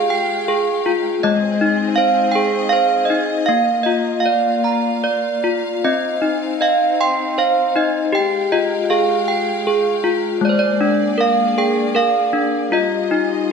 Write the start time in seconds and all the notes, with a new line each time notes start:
Already playing: G#3 F4 G4 G#4 F5 G5
0.10 G5
0.48 G#4
0.86 F4
1.23 G#3 C4 G#4 D#5
1.61 D#4
1.96 C5 F5
2.32 G#4 G5
2.69 C5 F5
3.05 D#5
3.10 D#4
3.46 A#3 F4 F5
3.83 F4 D#5
4.20 F5
4.26 D5
4.64 A#5
5.04 D5
5.44 F4
5.84 C4 D#4 D#5
6.22 D#4
6.61 D#5 F5
7.01 G5 C6
7.38 C5 F5
7.76 D#4 D#5
8.12 G#3 G4 F5 G5
8.52 F4 D#5
8.90 G#4 F5
9.28 G5
9.67 G#4
10.04 F4
10.41 G#3 A#3 G#4 D5
10.49 C5
10.59 D5
10.81 D4
11.18 A#4 F5
11.58 G#4 G5
11.95 A#4 F5
12.33 D4
12.72 G3 F4 D#5
13.11 D#4